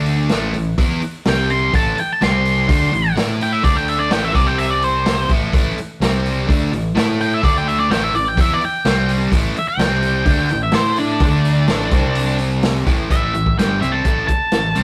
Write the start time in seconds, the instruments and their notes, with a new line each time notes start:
Already playing: fingered electric bass D2, overdriven electric guitar D3 A3 D4
0.06 open hi-hat
0.29 fingered electric bass A1, overdriven electric guitar A2 E3 A3, snare, open hi-hat
0.54 fingered electric bass A1, overdriven electric guitar A2 E3, open hi-hat
0.78 fingered electric bass E2, overdriven electric guitar E3 B3 E4, kick, open hi-hat
1.02 muted overdriven electric guitar stroke, muted fingered electric bass stroke, open hi-hat
1.25 fingered electric bass C2, overdriven electric guitar C3 G3 C4, lead electric guitar G5, snare, open hi-hat
1.50 lead electric guitar C6, open hi-hat
1.73 fingered electric bass A1, overdriven electric guitar A2 E3 A3, lead electric guitar A5, kick, open hi-hat
1.98 lead electric guitar G5, muted overdriven electric guitar stroke, muted fingered electric bass stroke, open hi-hat
2.13 lead electric guitar A5
2.21 fingered electric bass C2, overdriven electric guitar C3 G3 C4, lead electric guitar C6, snare, open hi-hat
2.45 open hi-hat
2.69 fingered electric bass D2, overdriven electric guitar D3 A3 D4, kick, open hi-hat
2.92 fingered electric bass A1, overdriven electric guitar A2 E3, open hi-hat
3.16 fingered electric bass A2, overdriven electric guitar A3 E4 A4, snare, open hi-hat
3.41 lead electric guitar G5, open hi-hat
3.53 lead electric guitar E5
3.63 fingered electric bass D2, overdriven electric guitar D3 A3 D4, lead electric guitar D5, kick, open hi-hat
3.76 lead electric guitar G5
3.88 lead electric guitar E5, open hi-hat
3.99 lead electric guitar D5
4.11 fingered electric bass A1, overdriven electric guitar A2 E3 A3, lead electric guitar G5, snare, open hi-hat
4.25 lead electric guitar E5
4.35 fingered electric bass C2, overdriven electric guitar C3 G3 C4, lead electric guitar D5, kick, open hi-hat
4.47 lead electric guitar G5
4.58 lead electric guitar E5, open hi-hat
4.70 lead electric guitar D5
4.82 lead electric guitar C5, open hi-hat
5.06 snare, open hi-hat
5.29 fingered electric bass A1, overdriven electric guitar A2 E3 A3, kick, open hi-hat
5.53 fingered electric bass A1, overdriven electric guitar A2 E3 A3, kick, open hi-hat
5.77 muted overdriven electric guitar stroke, muted fingered electric bass stroke, open hi-hat
6.00 fingered electric bass C2, overdriven electric guitar C3 G3 C4, snare, open hi-hat
6.26 open hi-hat
6.47 fingered electric bass D2, overdriven electric guitar D3 A3 D4, kick, open hi-hat
6.72 fingered electric bass A1, overdriven electric guitar A2 E3, open hi-hat
6.95 fingered electric bass A2, overdriven electric guitar A3 E4 A4, snare, open hi-hat
7.20 lead electric guitar G5, open hi-hat
7.34 lead electric guitar E5
7.43 fingered electric bass D2, overdriven electric guitar D3 A3 D4, lead electric guitar D5, kick, open hi-hat
7.58 lead electric guitar G5
7.68 lead electric guitar E5, open hi-hat
7.80 lead electric guitar D5
7.90 fingered electric bass A1, overdriven electric guitar A2 E3 A3, lead electric guitar G5, snare, open hi-hat
8.04 lead electric guitar E5
8.13 fingered electric bass A1, overdriven electric guitar A2 E3, lead electric guitar D5, open hi-hat
8.28 lead electric guitar G5
8.37 fingered electric bass E2, overdriven electric guitar E3 B3 E4, lead electric guitar E5, kick, open hi-hat
8.54 lead electric guitar D5
8.60 muted fingered electric bass stroke, muted overdriven electric guitar stroke, open hi-hat
8.65 lead electric guitar G5
8.85 fingered electric bass C2, overdriven electric guitar C3 G3 C4, snare, open hi-hat
9.09 open hi-hat
9.31 fingered electric bass A1, overdriven electric guitar A2 E3 A3, kick, open hi-hat
9.55 muted fingered electric bass stroke, muted overdriven electric guitar stroke, open hi-hat
9.59 lead electric guitar E5
9.68 lead electric guitar G5
9.77 fingered electric bass C2, overdriven electric guitar C3 G3 C4, snare, open hi-hat
10.02 open hi-hat
10.26 fingered electric bass D2, overdriven electric guitar D3 A3 D4, kick, open hi-hat
10.49 fingered electric bass A1, overdriven electric guitar A2 E3, open hi-hat
10.63 lead electric guitar E5
10.72 fingered electric bass A2, overdriven electric guitar A3 E4 A4, lead electric guitar C5, snare, open hi-hat
10.96 lead electric guitar D4, open hi-hat
11.20 fingered electric bass D2, overdriven electric guitar D3 A3 D4, kick, open hi-hat
11.45 open hi-hat
11.68 fingered electric bass A1, overdriven electric guitar A2 E3 A3, snare, open hi-hat
11.91 fingered electric bass C2, overdriven electric guitar C3 G3 C4, kick, open hi-hat
12.15 open hi-hat
12.38 open hi-hat
12.63 snare, open hi-hat
12.87 fingered electric bass A1, overdriven electric guitar A2 E3 A3, kick, open hi-hat
13.10 fingered electric bass A1, overdriven electric guitar A2 E3 A3, lead electric guitar E5, kick, closed hi-hat
13.34 fingered electric bass A1, overdriven electric guitar A2 E3, closed hi-hat
13.46 kick
13.58 fingered electric bass G1, overdriven electric guitar G2 D3 G3, lead electric guitar G5, snare, closed hi-hat
13.81 fingered electric bass C2, overdriven electric guitar C3 G3 C4, lead electric guitar E5, closed hi-hat
13.92 lead electric guitar A5
14.05 fingered electric bass A1, overdriven electric guitar A2 E3 A3, kick, closed hi-hat
14.27 lead electric guitar A5, muted fingered electric bass stroke, muted overdriven electric guitar stroke, kick, closed hi-hat
14.52 fingered electric bass A1, overdriven electric guitar A2 E3, snare, closed hi-hat
14.75 fingered electric bass C2, overdriven electric guitar C3 G3 C4, closed hi-hat